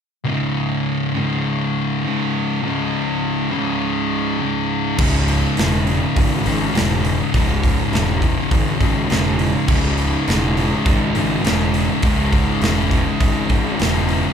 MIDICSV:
0, 0, Header, 1, 5, 480
1, 0, Start_track
1, 0, Key_signature, 4, "minor"
1, 0, Tempo, 587659
1, 218, Time_signature, 4, 2, 24, 8
1, 11705, End_track
2, 0, Start_track
2, 0, Title_t, "Distorted electric guitar"
2, 0, Program_c, 0, 30
2, 205, Note_on_c, 0, 37, 82
2, 219, Note_on_c, 0, 44, 91
2, 233, Note_on_c, 0, 49, 82
2, 929, Note_off_c, 0, 44, 0
2, 932, Note_off_c, 0, 49, 0
2, 935, Note_on_c, 0, 49, 81
2, 951, Note_on_c, 0, 44, 76
2, 962, Note_off_c, 0, 37, 0
2, 965, Note_on_c, 0, 37, 68
2, 1656, Note_off_c, 0, 44, 0
2, 1659, Note_off_c, 0, 37, 0
2, 1662, Note_on_c, 0, 37, 77
2, 1677, Note_on_c, 0, 44, 70
2, 1685, Note_off_c, 0, 49, 0
2, 1688, Note_on_c, 0, 49, 84
2, 2136, Note_off_c, 0, 37, 0
2, 2140, Note_off_c, 0, 44, 0
2, 2140, Note_on_c, 0, 37, 84
2, 2157, Note_on_c, 0, 44, 87
2, 2169, Note_off_c, 0, 49, 0
2, 2172, Note_on_c, 0, 49, 88
2, 2852, Note_off_c, 0, 37, 0
2, 2858, Note_off_c, 0, 49, 0
2, 2861, Note_off_c, 0, 44, 0
2, 2867, Note_on_c, 0, 49, 86
2, 2883, Note_on_c, 0, 44, 82
2, 2893, Note_on_c, 0, 37, 71
2, 3577, Note_off_c, 0, 49, 0
2, 3579, Note_off_c, 0, 37, 0
2, 3584, Note_off_c, 0, 44, 0
2, 3589, Note_on_c, 0, 37, 74
2, 3603, Note_on_c, 0, 44, 76
2, 3618, Note_on_c, 0, 49, 86
2, 4052, Note_off_c, 0, 37, 0
2, 4062, Note_on_c, 0, 37, 88
2, 4064, Note_off_c, 0, 44, 0
2, 4072, Note_off_c, 0, 49, 0
2, 4080, Note_on_c, 0, 44, 93
2, 4092, Note_on_c, 0, 49, 88
2, 4780, Note_off_c, 0, 49, 0
2, 4782, Note_off_c, 0, 44, 0
2, 4783, Note_on_c, 0, 49, 84
2, 4799, Note_on_c, 0, 44, 79
2, 4810, Note_off_c, 0, 37, 0
2, 4813, Note_on_c, 0, 37, 73
2, 5500, Note_off_c, 0, 37, 0
2, 5501, Note_off_c, 0, 44, 0
2, 5503, Note_on_c, 0, 37, 83
2, 5520, Note_on_c, 0, 44, 93
2, 5529, Note_off_c, 0, 49, 0
2, 5532, Note_on_c, 0, 49, 92
2, 5980, Note_off_c, 0, 37, 0
2, 5981, Note_off_c, 0, 44, 0
2, 5984, Note_on_c, 0, 37, 89
2, 6000, Note_on_c, 0, 44, 87
2, 6010, Note_off_c, 0, 49, 0
2, 6013, Note_on_c, 0, 49, 97
2, 6697, Note_off_c, 0, 49, 0
2, 6700, Note_on_c, 0, 49, 96
2, 6701, Note_off_c, 0, 44, 0
2, 6717, Note_on_c, 0, 44, 81
2, 6727, Note_off_c, 0, 37, 0
2, 6730, Note_on_c, 0, 37, 76
2, 7416, Note_off_c, 0, 37, 0
2, 7419, Note_off_c, 0, 44, 0
2, 7419, Note_on_c, 0, 37, 83
2, 7435, Note_on_c, 0, 44, 90
2, 7444, Note_off_c, 0, 49, 0
2, 7447, Note_on_c, 0, 49, 82
2, 7897, Note_off_c, 0, 37, 0
2, 7897, Note_off_c, 0, 44, 0
2, 7900, Note_on_c, 0, 37, 82
2, 7918, Note_on_c, 0, 44, 91
2, 7925, Note_off_c, 0, 49, 0
2, 7929, Note_on_c, 0, 49, 99
2, 8618, Note_off_c, 0, 44, 0
2, 8623, Note_off_c, 0, 49, 0
2, 8627, Note_on_c, 0, 49, 86
2, 8642, Note_on_c, 0, 44, 88
2, 8651, Note_off_c, 0, 37, 0
2, 8654, Note_on_c, 0, 37, 83
2, 9339, Note_off_c, 0, 37, 0
2, 9339, Note_off_c, 0, 44, 0
2, 9342, Note_on_c, 0, 37, 86
2, 9358, Note_on_c, 0, 44, 81
2, 9366, Note_off_c, 0, 49, 0
2, 9369, Note_on_c, 0, 49, 90
2, 9817, Note_off_c, 0, 44, 0
2, 9820, Note_off_c, 0, 37, 0
2, 9823, Note_on_c, 0, 37, 93
2, 9838, Note_on_c, 0, 44, 92
2, 9847, Note_off_c, 0, 49, 0
2, 9850, Note_on_c, 0, 49, 92
2, 10536, Note_off_c, 0, 44, 0
2, 10536, Note_off_c, 0, 49, 0
2, 10539, Note_on_c, 0, 49, 96
2, 10553, Note_on_c, 0, 44, 91
2, 10564, Note_off_c, 0, 37, 0
2, 10567, Note_on_c, 0, 37, 78
2, 11253, Note_off_c, 0, 37, 0
2, 11253, Note_off_c, 0, 44, 0
2, 11256, Note_on_c, 0, 37, 82
2, 11270, Note_on_c, 0, 44, 88
2, 11282, Note_off_c, 0, 49, 0
2, 11285, Note_on_c, 0, 49, 92
2, 11705, Note_off_c, 0, 37, 0
2, 11705, Note_off_c, 0, 44, 0
2, 11705, Note_off_c, 0, 49, 0
2, 11705, End_track
3, 0, Start_track
3, 0, Title_t, "Distorted electric guitar"
3, 0, Program_c, 1, 30
3, 5268, Note_on_c, 1, 49, 90
3, 5283, Note_on_c, 1, 44, 75
3, 5299, Note_on_c, 1, 37, 72
3, 5503, Note_off_c, 1, 44, 0
3, 5504, Note_off_c, 1, 37, 0
3, 5534, Note_off_c, 1, 49, 0
3, 7179, Note_on_c, 1, 49, 89
3, 7197, Note_on_c, 1, 44, 71
3, 7212, Note_on_c, 1, 37, 74
3, 7417, Note_off_c, 1, 37, 0
3, 7419, Note_off_c, 1, 44, 0
3, 7445, Note_off_c, 1, 49, 0
3, 9101, Note_on_c, 1, 49, 84
3, 9119, Note_on_c, 1, 44, 85
3, 9132, Note_on_c, 1, 37, 79
3, 9338, Note_off_c, 1, 44, 0
3, 9347, Note_off_c, 1, 37, 0
3, 9377, Note_off_c, 1, 49, 0
3, 11029, Note_on_c, 1, 49, 96
3, 11043, Note_on_c, 1, 44, 79
3, 11055, Note_on_c, 1, 37, 67
3, 11258, Note_off_c, 1, 37, 0
3, 11258, Note_off_c, 1, 44, 0
3, 11290, Note_off_c, 1, 49, 0
3, 11705, End_track
4, 0, Start_track
4, 0, Title_t, "Picked electric bass"
4, 0, Program_c, 2, 34
4, 4074, Note_on_c, 2, 25, 91
4, 4418, Note_off_c, 2, 25, 0
4, 4562, Note_on_c, 2, 28, 94
4, 4903, Note_off_c, 2, 28, 0
4, 5034, Note_on_c, 2, 32, 99
4, 5206, Note_off_c, 2, 32, 0
4, 5272, Note_on_c, 2, 32, 91
4, 5444, Note_off_c, 2, 32, 0
4, 5509, Note_on_c, 2, 28, 89
4, 5854, Note_off_c, 2, 28, 0
4, 5998, Note_on_c, 2, 25, 93
4, 6340, Note_off_c, 2, 25, 0
4, 6471, Note_on_c, 2, 28, 99
4, 6815, Note_off_c, 2, 28, 0
4, 6953, Note_on_c, 2, 32, 98
4, 7124, Note_off_c, 2, 32, 0
4, 7190, Note_on_c, 2, 32, 85
4, 7362, Note_off_c, 2, 32, 0
4, 7426, Note_on_c, 2, 28, 79
4, 7770, Note_off_c, 2, 28, 0
4, 7911, Note_on_c, 2, 25, 100
4, 8254, Note_off_c, 2, 25, 0
4, 8395, Note_on_c, 2, 28, 97
4, 8736, Note_off_c, 2, 28, 0
4, 8868, Note_on_c, 2, 32, 97
4, 9039, Note_off_c, 2, 32, 0
4, 9110, Note_on_c, 2, 32, 98
4, 9281, Note_off_c, 2, 32, 0
4, 9353, Note_on_c, 2, 28, 93
4, 9694, Note_off_c, 2, 28, 0
4, 9828, Note_on_c, 2, 25, 89
4, 10170, Note_off_c, 2, 25, 0
4, 10305, Note_on_c, 2, 28, 90
4, 10648, Note_off_c, 2, 28, 0
4, 10786, Note_on_c, 2, 32, 96
4, 10957, Note_off_c, 2, 32, 0
4, 11026, Note_on_c, 2, 32, 96
4, 11196, Note_off_c, 2, 32, 0
4, 11275, Note_on_c, 2, 28, 85
4, 11614, Note_off_c, 2, 28, 0
4, 11705, End_track
5, 0, Start_track
5, 0, Title_t, "Drums"
5, 4071, Note_on_c, 9, 49, 120
5, 4074, Note_on_c, 9, 36, 120
5, 4152, Note_off_c, 9, 49, 0
5, 4155, Note_off_c, 9, 36, 0
5, 4313, Note_on_c, 9, 46, 63
5, 4395, Note_off_c, 9, 46, 0
5, 4551, Note_on_c, 9, 46, 83
5, 4570, Note_on_c, 9, 38, 112
5, 4632, Note_off_c, 9, 46, 0
5, 4651, Note_off_c, 9, 38, 0
5, 4794, Note_on_c, 9, 46, 54
5, 4876, Note_off_c, 9, 46, 0
5, 5036, Note_on_c, 9, 36, 106
5, 5036, Note_on_c, 9, 46, 84
5, 5117, Note_off_c, 9, 36, 0
5, 5117, Note_off_c, 9, 46, 0
5, 5276, Note_on_c, 9, 46, 64
5, 5357, Note_off_c, 9, 46, 0
5, 5515, Note_on_c, 9, 46, 79
5, 5534, Note_on_c, 9, 38, 106
5, 5597, Note_off_c, 9, 46, 0
5, 5616, Note_off_c, 9, 38, 0
5, 5755, Note_on_c, 9, 46, 63
5, 5837, Note_off_c, 9, 46, 0
5, 5997, Note_on_c, 9, 36, 114
5, 5999, Note_on_c, 9, 46, 87
5, 6078, Note_off_c, 9, 36, 0
5, 6081, Note_off_c, 9, 46, 0
5, 6236, Note_on_c, 9, 36, 75
5, 6244, Note_on_c, 9, 46, 61
5, 6318, Note_off_c, 9, 36, 0
5, 6325, Note_off_c, 9, 46, 0
5, 6477, Note_on_c, 9, 46, 70
5, 6496, Note_on_c, 9, 38, 93
5, 6559, Note_off_c, 9, 46, 0
5, 6578, Note_off_c, 9, 38, 0
5, 6713, Note_on_c, 9, 46, 53
5, 6714, Note_on_c, 9, 36, 72
5, 6795, Note_off_c, 9, 46, 0
5, 6796, Note_off_c, 9, 36, 0
5, 6953, Note_on_c, 9, 46, 80
5, 6954, Note_on_c, 9, 36, 116
5, 7035, Note_off_c, 9, 36, 0
5, 7035, Note_off_c, 9, 46, 0
5, 7192, Note_on_c, 9, 36, 82
5, 7192, Note_on_c, 9, 46, 57
5, 7274, Note_off_c, 9, 36, 0
5, 7274, Note_off_c, 9, 46, 0
5, 7433, Note_on_c, 9, 46, 69
5, 7451, Note_on_c, 9, 38, 106
5, 7514, Note_off_c, 9, 46, 0
5, 7533, Note_off_c, 9, 38, 0
5, 7670, Note_on_c, 9, 46, 61
5, 7752, Note_off_c, 9, 46, 0
5, 7908, Note_on_c, 9, 49, 102
5, 7909, Note_on_c, 9, 36, 120
5, 7990, Note_off_c, 9, 49, 0
5, 7991, Note_off_c, 9, 36, 0
5, 8149, Note_on_c, 9, 46, 59
5, 8231, Note_off_c, 9, 46, 0
5, 8395, Note_on_c, 9, 46, 72
5, 8413, Note_on_c, 9, 38, 103
5, 8476, Note_off_c, 9, 46, 0
5, 8495, Note_off_c, 9, 38, 0
5, 8635, Note_on_c, 9, 46, 55
5, 8716, Note_off_c, 9, 46, 0
5, 8869, Note_on_c, 9, 36, 115
5, 8869, Note_on_c, 9, 46, 78
5, 8951, Note_off_c, 9, 36, 0
5, 8951, Note_off_c, 9, 46, 0
5, 9107, Note_on_c, 9, 46, 61
5, 9189, Note_off_c, 9, 46, 0
5, 9350, Note_on_c, 9, 46, 81
5, 9368, Note_on_c, 9, 38, 115
5, 9431, Note_off_c, 9, 46, 0
5, 9450, Note_off_c, 9, 38, 0
5, 9588, Note_on_c, 9, 46, 64
5, 9670, Note_off_c, 9, 46, 0
5, 9822, Note_on_c, 9, 46, 85
5, 9827, Note_on_c, 9, 36, 119
5, 9904, Note_off_c, 9, 46, 0
5, 9909, Note_off_c, 9, 36, 0
5, 10068, Note_on_c, 9, 36, 85
5, 10069, Note_on_c, 9, 46, 60
5, 10150, Note_off_c, 9, 36, 0
5, 10151, Note_off_c, 9, 46, 0
5, 10304, Note_on_c, 9, 46, 73
5, 10322, Note_on_c, 9, 38, 110
5, 10385, Note_off_c, 9, 46, 0
5, 10404, Note_off_c, 9, 38, 0
5, 10547, Note_on_c, 9, 36, 73
5, 10547, Note_on_c, 9, 46, 53
5, 10628, Note_off_c, 9, 36, 0
5, 10629, Note_off_c, 9, 46, 0
5, 10786, Note_on_c, 9, 36, 109
5, 10786, Note_on_c, 9, 46, 80
5, 10868, Note_off_c, 9, 36, 0
5, 10868, Note_off_c, 9, 46, 0
5, 11022, Note_on_c, 9, 46, 55
5, 11025, Note_on_c, 9, 36, 84
5, 11104, Note_off_c, 9, 46, 0
5, 11107, Note_off_c, 9, 36, 0
5, 11268, Note_on_c, 9, 46, 74
5, 11287, Note_on_c, 9, 38, 106
5, 11349, Note_off_c, 9, 46, 0
5, 11368, Note_off_c, 9, 38, 0
5, 11506, Note_on_c, 9, 46, 58
5, 11588, Note_off_c, 9, 46, 0
5, 11705, End_track
0, 0, End_of_file